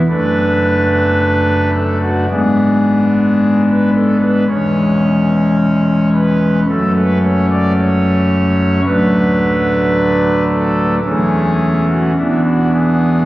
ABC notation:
X:1
M:4/4
L:1/16
Q:1/4=55
K:Dlyd
V:1 name="Pipe organ"
B6 A F G4- G B A B | c6 B2 A B c d c4 | B6 A2 G3 F E F G2 |]
V:2 name="Pipe organ" clef=bass
[F,,,F,,A,D]8 [G,,,G,,G,B,D]8 | [E,,,E,,G,C]8 [F,,,F,,F,A,C]8 | [D,,,D,,F,A,D]8 [E,,,E,,E,A,C]4 [E,,,E,,E,B,D]4 |]